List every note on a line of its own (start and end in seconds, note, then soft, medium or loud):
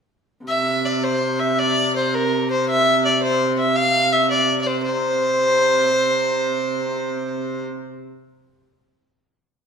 0.46 4.82 C3 medium
0.46 0.87 E5 medium
0.85 1.05 D5 medium
1.04 1.41 C5 medium
1.39 1.60 E5 medium
1.58 1.95 D5 loud
1.96 2.16 C5 medium
2.14 2.50 A#4 medium
2.51 2.67 C5 medium
2.69 3.03 E5 loud
3.05 3.22 D5 medium
3.23 3.56 C5 medium
3.59 3.78 E5 medium
3.76 4.14 F5 loud
4.12 4.30 E5 medium
4.31 4.59 D5 medium
4.61 4.68 D5 medium
4.66 4.82 C5 medium
4.82 7.64 C3 medium
4.82 7.61 C5 medium